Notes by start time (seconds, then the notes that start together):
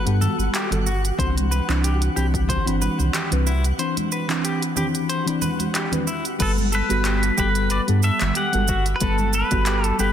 Already playing: F#4 F#5
0.05 G2 G3 B3 A4 F#5, closed hi-hat, shaker
0.21 A4, high conga, low conga, shaker
0.39 G1, shaker
0.54 G4, clap, closed hi-hat, shaker
0.70 G1 G3 B3 F#4 A4, closed hi-hat, low conga, shaker
0.86 F#4, shaker
1.05 closed hi-hat, shaker
1.18 C2 E3 C4 D4 C5 B5, kick, closed hi-hat, shaker
1.37 closed hi-hat, high conga, shaker
1.51 B4, shaker
1.68 C2 E3 C4 D4 B5, clap, shaker
1.84 G4, closed hi-hat, shaker
2.02 closed hi-hat, shaker
2.16 C2 E3 C4 D4 G4 B5, shaker
2.34 kick, closed hi-hat, shaker
2.49 C5, kick, closed hi-hat, shaker
2.66 G1 E3 C4 D4 B5, closed hi-hat, shaker
2.81 B4, high conga, shaker
2.99 C2, low conga, shaker
3.14 G4, clap, closed hi-hat, shaker
3.31 C2 E3 C4 D4 B4, closed hi-hat, shaker
3.47 E4, shaker
3.64 closed hi-hat, shaker
3.78 E3 C4 D4 C5 B5, closed hi-hat, shaker
3.97 closed hi-hat, high conga, shaker
4.12 B4, shaker
4.28 E3 C4 D4 B5, clap, closed hi-hat, shaker
4.44 G4, closed hi-hat, shaker
4.63 closed hi-hat, shaker
4.76 E3 C4 D4 G4 B5, low conga, shaker
4.95 closed hi-hat, shaker
5.09 C5, closed hi-hat, shaker
5.26 E3 C4 D4 B5, closed hi-hat, shaker
5.42 B4, high conga, low conga, shaker
5.60 closed hi-hat, high conga, shaker
5.75 G4, clap, closed hi-hat, shaker
5.91 E3 C4 D4 B4, closed hi-hat, high conga, low conga, shaker
6.07 E4, shaker
6.25 closed hi-hat, shaker
6.39 G1 G3 B3 F#4 A4 B4, kick, closed hi-hat, crash, shaker
6.58 high conga, shaker
6.72 A4 B4, shaker
6.89 G1 G3 B3 F#4 A4, closed hi-hat, shaker
7.05 G4, clap, closed hi-hat, shaker
7.23 closed hi-hat, shaker
7.37 G1 G3 B3 G4 A4 B4 F#5, kick, shaker
7.55 closed hi-hat, shaker
7.70 B4 D5, closed hi-hat, shaker
7.87 G2 G3 B3 A4 F#5, closed hi-hat, shaker
8.03 A4 E5, shaker
8.20 G1, clap, closed hi-hat, high conga, low conga, shaker
8.35 G4 F#5, closed hi-hat, shaker
8.52 G1 G3 B3 F#4 A4, closed hi-hat, high conga, shaker
8.68 F#4, kick, shaker
8.86 closed hi-hat, shaker
8.96 B4
9.00 G1 G3 B3 A4 B4 F#5, kick, closed hi-hat, shaker
9.18 high conga, shaker
9.33 A4 B4, shaker
9.51 G1 G3 B3 F#4 A4, kick, closed hi-hat, shaker
9.66 G4, clap, closed hi-hat, shaker
9.84 A4, closed hi-hat, shaker
9.98 G1 G3 B3 G4 A4 B4 F#5, shaker